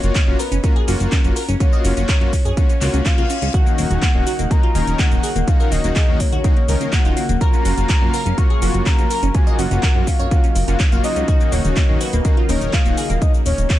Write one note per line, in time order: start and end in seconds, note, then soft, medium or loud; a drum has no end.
0.00 0.11 F#1 medium
0.00 0.19 A#3 medium
0.00 0.19 F4 medium
0.00 0.19 F#4 medium
0.00 0.41 C#5 loud
0.00 closed hi-hat medium
0.00 shaker soft
0.15 0.22 C#4 medium
0.15 kick loud
0.15 clap loud
0.15 closed hi-hat medium
0.15 shaker soft
0.27 0.35 F#1 medium
0.27 0.37 A#3 loud
0.27 0.34 C#4 medium
0.27 0.37 F4 medium
0.27 0.37 F#4 loud
0.39 0.46 A#4 medium
0.39 0.65 B4 loud
0.39 open hi-hat loud
0.39 shaker medium
0.52 0.59 F#1 medium
0.52 0.59 C#4 medium
0.52 closed hi-hat medium
0.52 shaker soft
0.64 0.74 A#3 loud
0.64 0.71 C#4 medium
0.64 0.74 F4 medium
0.64 0.74 F#4 loud
0.64 1.36 A#4 medium
0.64 kick loud
0.64 closed hi-hat medium
0.64 shaker soft
0.76 0.83 G#4 medium
0.76 closed hi-hat soft
0.88 0.96 F#1 loud
0.88 1.21 A#3 medium
0.88 0.95 C#4 medium
0.88 1.21 F4 medium
0.88 1.21 F#4 loud
0.88 open hi-hat loud
0.88 shaker medium
1.00 1.08 F#1 medium
1.00 closed hi-hat medium
1.00 shaker soft
1.12 1.19 C#4 medium
1.12 kick loud
1.12 clap loud
1.12 closed hi-hat medium
1.12 shaker soft
1.24 1.32 F#1 medium
1.24 1.34 A#3 medium
1.24 1.31 C#4 medium
1.24 1.34 F4 medium
1.24 1.34 F#4 medium
1.24 closed hi-hat soft
1.24 shaker soft
1.36 1.43 A#4 medium
1.36 open hi-hat loud
1.36 shaker medium
1.49 1.56 F#1 medium
1.49 1.55 C#4 medium
1.49 closed hi-hat medium
1.49 shaker soft
1.60 1.94 A#3 medium
1.60 1.67 C#4 medium
1.60 1.94 F4 medium
1.60 1.94 F#4 loud
1.60 3.07 C#5 medium
1.60 kick loud
1.60 closed hi-hat medium
1.60 shaker soft
1.73 1.80 D#5 loud
1.73 shaker soft
1.85 1.92 F#1 loud
1.85 1.92 C#4 medium
1.85 open hi-hat loud
1.85 shaker medium
1.97 2.04 F#1 medium
1.97 2.13 A#3 medium
1.97 2.04 C#4 medium
1.97 2.13 F4 medium
1.97 2.13 F#4 medium
1.97 closed hi-hat medium
1.97 shaker soft
2.09 2.16 A#4 medium
2.09 kick loud
2.09 clap loud
2.09 closed hi-hat medium
2.09 shaker soft
2.21 2.29 F#2 medium
2.21 2.31 A#3 loud
2.21 2.28 C#4 medium
2.21 2.31 F4 medium
2.21 2.31 F#4 loud
2.21 closed hi-hat soft
2.33 2.40 C#4 medium
2.33 kick medium
2.33 open hi-hat loud
2.33 shaker medium
2.45 2.53 F#2 medium
2.45 2.52 G#4 loud
2.45 closed hi-hat medium
2.45 shaker soft
2.57 2.67 A#3 loud
2.57 2.64 C#4 medium
2.57 2.67 F4 medium
2.57 2.67 F#4 loud
2.57 kick loud
2.57 closed hi-hat medium
2.57 reverse cymbal medium
2.57 shaker soft
2.69 2.76 C#4 medium
2.69 closed hi-hat soft
2.69 shaker soft
2.81 2.89 C#2 loud
2.81 3.15 A#3 medium
2.81 3.15 F4 medium
2.81 3.15 F#4 medium
2.81 clap medium
2.81 open hi-hat loud
2.81 shaker medium
2.94 3.01 C#2 medium
2.94 3.00 C#4 medium
2.94 closed hi-hat medium
2.94 shaker soft
3.06 3.13 C#4 medium
3.06 3.55 F5 loud
3.06 kick loud
3.06 clap loud
3.06 closed hi-hat medium
3.06 shaker soft
3.18 3.25 C#2 medium
3.18 3.28 A#3 medium
3.18 3.28 F4 medium
3.18 3.25 F4 medium
3.18 3.28 F#4 medium
3.18 closed hi-hat soft
3.18 shaker soft
3.30 3.37 C#4 medium
3.30 open hi-hat loud
3.30 shaker medium
3.42 3.50 C#2 medium
3.42 3.49 C#4 medium
3.42 closed hi-hat medium
3.42 shaker soft
3.54 11.24 C#3 medium
3.54 3.88 D#3 medium
3.54 13.79 F#3 medium
3.54 11.24 A#3 medium
3.54 3.88 C#4 medium
3.54 3.87 D#4 medium
3.54 7.37 D#4 medium
3.54 3.88 F#4 medium
3.54 3.61 F#4 loud
3.54 3.77 F#5 loud
3.54 kick loud
3.54 closed hi-hat medium
3.54 shaker soft
3.66 3.73 A#3 medium
3.66 shaker soft
3.78 3.86 D#1 medium
3.78 3.85 A#3 medium
3.78 4.52 F#5 loud
3.78 open hi-hat loud
3.78 shaker medium
3.90 3.98 D#1 medium
3.90 4.06 D#3 medium
3.90 4.06 C#4 medium
3.90 4.06 D#4 medium
3.90 4.06 F#4 medium
3.90 closed hi-hat medium
3.90 shaker soft
4.02 4.09 A#3 medium
4.02 kick loud
4.02 clap loud
4.02 closed hi-hat medium
4.02 shaker soft
4.15 4.22 D#1 medium
4.15 4.25 D#3 loud
4.15 4.22 A#3 medium
4.15 4.25 C#4 medium
4.15 4.25 D#4 medium
4.15 4.25 F#4 loud
4.27 4.34 F#4 medium
4.27 open hi-hat loud
4.27 shaker medium
4.39 4.46 D#1 medium
4.39 4.46 A#3 medium
4.39 closed hi-hat medium
4.39 shaker soft
4.50 4.61 D#3 loud
4.50 4.58 A#3 medium
4.50 4.61 C#4 medium
4.50 4.61 D#4 medium
4.50 4.61 F#4 loud
4.50 5.00 A#5 loud
4.50 kick loud
4.50 closed hi-hat medium
4.50 shaker soft
4.63 4.70 F4 medium
4.63 closed hi-hat soft
4.75 4.83 D#1 loud
4.75 5.08 D#3 medium
4.75 4.82 A#3 medium
4.75 5.08 C#4 medium
4.75 5.08 D#4 medium
4.75 5.08 A#4 loud
4.75 open hi-hat loud
4.75 shaker medium
4.87 4.95 D#1 medium
4.87 closed hi-hat medium
4.87 shaker soft
4.99 5.06 A#3 medium
4.99 5.49 F#5 loud
4.99 kick loud
4.99 clap loud
4.99 closed hi-hat medium
4.99 shaker soft
5.11 5.19 D#1 medium
5.11 5.21 D#3 medium
5.11 5.18 A#3 medium
5.11 5.21 C#4 medium
5.11 5.21 D#4 medium
5.11 5.21 F#4 medium
5.11 closed hi-hat soft
5.11 shaker soft
5.23 5.30 G#4 medium
5.23 open hi-hat loud
5.23 shaker medium
5.36 5.43 D#1 medium
5.36 5.42 A#3 medium
5.36 closed hi-hat medium
5.36 shaker soft
5.47 5.81 D#3 medium
5.47 5.55 A#3 medium
5.47 5.81 C#4 medium
5.47 5.81 D#4 medium
5.47 5.81 F#4 loud
5.47 5.73 F5 loud
5.47 kick loud
5.47 closed hi-hat medium
5.47 shaker soft
5.60 5.67 A#4 loud
5.60 shaker soft
5.71 5.79 D#1 medium
5.71 5.79 A#3 medium
5.71 6.21 D#5 loud
5.71 open hi-hat loud
5.71 shaker medium
5.84 5.91 D#1 medium
5.84 6.00 D#3 medium
5.84 5.91 A#3 medium
5.84 6.00 C#4 medium
5.84 6.00 D#4 medium
5.84 6.00 F#4 medium
5.84 closed hi-hat medium
5.84 shaker soft
5.96 6.03 G#4 loud
5.96 kick loud
5.96 clap loud
5.96 closed hi-hat medium
5.96 shaker soft
6.08 6.16 D#2 medium
6.08 6.18 D#3 loud
6.08 6.15 A#3 medium
6.08 6.18 C#4 medium
6.08 6.18 D#4 medium
6.08 6.18 F#4 loud
6.20 6.27 A#3 medium
6.20 6.94 C#5 loud
6.20 kick medium
6.20 open hi-hat loud
6.20 shaker medium
6.32 6.40 D#2 medium
6.32 6.39 F#4 loud
6.32 closed hi-hat medium
6.32 shaker soft
6.44 6.55 D#3 loud
6.44 6.51 A#3 medium
6.44 6.55 C#4 medium
6.44 6.55 D#4 medium
6.44 6.55 F#4 loud
6.44 kick loud
6.44 closed hi-hat medium
6.44 shaker soft
6.57 6.63 A#3 medium
6.57 closed hi-hat soft
6.68 6.76 C#2 loud
6.68 7.02 D#3 medium
6.68 7.02 C#4 medium
6.68 7.02 D#4 medium
6.68 7.02 A#4 loud
6.68 open hi-hat loud
6.68 shaker medium
6.81 6.88 C#2 medium
6.81 6.88 A#3 medium
6.81 closed hi-hat medium
6.81 shaker soft
6.92 7.00 A#3 medium
6.92 7.40 F#5 loud
6.92 kick loud
6.92 clap loud
6.92 closed hi-hat medium
6.92 shaker soft
7.05 7.12 D#1 medium
7.05 7.15 D#3 medium
7.05 7.15 C#4 medium
7.05 7.15 D#4 medium
7.05 7.12 F4 loud
7.05 7.15 F#4 medium
7.05 closed hi-hat soft
7.05 shaker soft
7.17 7.24 A#3 medium
7.17 open hi-hat loud
7.17 shaker medium
7.29 7.37 D#1 medium
7.29 7.36 A#3 medium
7.29 closed hi-hat medium
7.29 shaker soft
7.41 7.75 A#3 medium
7.41 7.75 F4 medium
7.41 7.75 F#4 loud
7.41 7.48 A#4 loud
7.41 9.33 F5 medium
7.41 7.63 A#5 loud
7.41 kick loud
7.41 closed hi-hat medium
7.41 shaker soft
7.53 7.60 C#4 medium
7.53 shaker soft
7.65 7.73 F#1 medium
7.65 7.72 C#4 medium
7.65 8.39 A#5 loud
7.65 open hi-hat loud
7.65 shaker medium
7.78 7.85 F#1 medium
7.78 7.94 A#3 medium
7.78 7.94 F4 medium
7.78 7.94 F#4 medium
7.78 closed hi-hat medium
7.78 shaker soft
7.89 7.97 C#4 medium
7.89 kick loud
7.89 clap loud
7.89 closed hi-hat medium
7.89 shaker soft
8.02 8.09 F#1 medium
8.02 8.12 A#3 loud
8.02 8.09 C#4 medium
8.02 8.12 F4 medium
8.02 8.12 F#4 loud
8.14 8.21 A#4 loud
8.14 open hi-hat loud
8.14 shaker medium
8.26 8.33 F#1 medium
8.26 8.33 C#4 medium
8.26 closed hi-hat medium
8.26 shaker soft
8.38 8.48 A#3 loud
8.38 8.45 C#4 medium
8.38 8.48 F4 medium
8.38 8.48 F#4 loud
8.38 8.87 C#6 loud
8.38 kick loud
8.38 closed hi-hat medium
8.38 shaker soft
8.50 8.57 G#4 medium
8.50 closed hi-hat soft
8.62 8.70 F#1 loud
8.62 8.96 A#3 medium
8.62 8.69 C#4 medium
8.62 8.96 F4 medium
8.62 8.96 F#4 loud
8.62 open hi-hat loud
8.62 shaker medium
8.74 8.82 F#1 medium
8.74 closed hi-hat medium
8.74 shaker soft
8.86 8.93 C#4 medium
8.86 9.36 A#5 loud
8.86 kick loud
8.86 clap loud
8.86 closed hi-hat medium
8.86 shaker soft
8.99 9.06 F#1 medium
8.99 9.08 A#3 medium
8.99 9.05 C#4 medium
8.99 9.08 F4 medium
8.99 9.08 F#4 medium
8.99 closed hi-hat soft
8.99 shaker soft
9.10 9.18 A#4 medium
9.10 open hi-hat loud
9.10 shaker medium
9.23 9.30 F#1 medium
9.23 9.30 C#4 medium
9.23 closed hi-hat medium
9.23 shaker soft
9.34 9.68 A#3 medium
9.34 9.42 C#4 medium
9.34 13.79 D#4 medium
9.34 9.68 F4 medium
9.34 9.68 F#4 loud
9.34 9.60 G#5 loud
9.34 kick loud
9.34 closed hi-hat medium
9.34 shaker soft
9.47 9.54 D#5 loud
9.47 closed hi-hat soft
9.47 shaker soft
9.59 9.66 F#1 medium
9.59 9.66 C#4 medium
9.59 10.09 F#5 loud
9.59 open hi-hat loud
9.59 shaker medium
9.71 9.79 F#1 medium
9.71 9.87 A#3 medium
9.71 9.78 C#4 medium
9.71 9.87 F4 medium
9.71 9.87 F#4 medium
9.71 closed hi-hat medium
9.71 shaker soft
9.83 9.90 A#4 loud
9.83 kick loud
9.83 clap loud
9.83 closed hi-hat medium
9.83 shaker soft
9.95 10.03 F#2 medium
9.95 10.05 A#3 medium
9.95 10.02 C#4 medium
9.95 10.05 F4 medium
9.95 10.05 F#4 loud
10.07 10.14 C#4 medium
10.07 10.80 F5 loud
10.07 kick medium
10.07 open hi-hat loud
10.07 shaker medium
10.19 10.27 F#2 medium
10.19 10.26 C#5 loud
10.19 closed hi-hat soft
10.19 shaker soft
10.31 10.42 A#3 loud
10.31 10.38 C#4 medium
10.31 10.42 F4 medium
10.31 10.42 F#4 loud
10.31 kick loud
10.31 closed hi-hat medium
10.31 shaker soft
10.44 10.51 C#4 medium
10.44 closed hi-hat soft
10.44 shaker soft
10.55 10.63 F#1 medium
10.55 open hi-hat loud
10.55 shaker medium
10.68 10.75 F#1 medium
10.68 10.78 A#3 medium
10.68 10.75 C#4 medium
10.68 10.78 F4 medium
10.68 10.78 F#4 loud
10.68 closed hi-hat medium
10.68 shaker soft
10.80 10.87 C#4 medium
10.80 kick loud
10.80 clap loud
10.80 closed hi-hat medium
10.80 shaker soft
10.92 10.99 F#1 medium
10.92 11.25 A#3 medium
10.92 11.25 F4 medium
10.92 11.25 F#4 loud
10.92 10.99 F5 loud
10.92 closed hi-hat soft
10.92 shaker soft
11.04 11.11 C#4 medium
11.04 11.54 D#5 loud
11.04 open hi-hat loud
11.04 shaker medium
11.16 11.24 C#2 medium
11.16 11.23 C#4 medium
11.16 closed hi-hat soft
11.16 shaker soft
11.28 13.79 C#3 medium
11.28 11.62 D#3 medium
11.28 13.79 A#3 medium
11.28 11.62 C#4 medium
11.28 11.62 D#4 medium
11.28 11.62 F#4 loud
11.28 11.35 F#4 loud
11.28 kick loud
11.28 closed hi-hat medium
11.28 shaker soft
11.40 11.47 A#3 medium
11.40 shaker soft
11.52 11.60 D#1 medium
11.52 11.59 A#3 medium
11.52 12.02 C#5 loud
11.52 open hi-hat loud
11.52 shaker medium
11.65 11.72 D#1 medium
11.65 11.81 D#3 medium
11.65 11.81 C#4 medium
11.65 11.81 D#4 medium
11.65 11.81 F#4 medium
11.65 closed hi-hat medium
11.65 shaker soft
11.77 11.84 A#3 medium
11.77 kick loud
11.77 clap loud
11.77 closed hi-hat medium
11.77 shaker soft
11.89 11.96 D#1 medium
11.89 11.99 D#3 loud
11.89 11.96 A#3 medium
11.89 11.99 C#4 medium
11.89 11.99 D#4 medium
11.89 11.99 F#4 loud
12.01 12.08 F#4 loud
12.01 12.26 B4 medium
12.01 open hi-hat loud
12.01 shaker medium
12.13 12.21 D#1 medium
12.13 12.20 A#3 medium
12.13 closed hi-hat medium
12.13 shaker soft
12.25 12.35 D#3 loud
12.25 12.32 A#3 medium
12.25 12.35 C#4 medium
12.25 12.35 D#4 medium
12.25 12.35 F#4 loud
12.25 12.51 A#4 medium
12.25 kick loud
12.25 closed hi-hat medium
12.25 shaker soft
12.37 12.44 F4 medium
12.37 closed hi-hat soft
12.49 12.57 D#1 loud
12.49 12.83 D#3 medium
12.49 12.56 A#3 medium
12.49 12.83 C#4 medium
12.49 12.83 D#4 medium
12.49 12.83 A#4 loud
12.49 12.75 C#5 loud
12.49 open hi-hat loud
12.49 shaker medium
12.61 12.69 D#1 medium
12.61 closed hi-hat medium
12.61 shaker soft
12.73 12.80 A#3 medium
12.73 13.21 F5 loud
12.73 kick loud
12.73 clap loud
12.73 closed hi-hat medium
12.73 shaker soft
12.86 12.93 D#1 medium
12.86 12.96 D#3 medium
12.86 12.92 A#3 medium
12.86 12.96 C#4 medium
12.86 12.96 D#4 medium
12.86 12.96 F#4 medium
12.86 closed hi-hat soft
12.86 shaker soft
12.97 13.05 G#4 medium
12.97 open hi-hat loud
12.97 shaker medium
13.10 13.17 D#1 medium
13.10 13.17 A#3 medium
13.10 shaker soft
13.22 13.33 D#5 loud
13.22 kick loud
13.22 closed hi-hat medium
13.22 shaker soft
13.34 shaker soft
13.46 13.54 D#1 loud
13.46 13.79 C#5 loud
13.46 open hi-hat loud
13.46 shaker medium
13.58 13.66 D#1 medium
13.58 closed hi-hat medium
13.58 shaker soft
13.70 kick loud
13.70 clap loud
13.70 closed hi-hat medium
13.70 shaker soft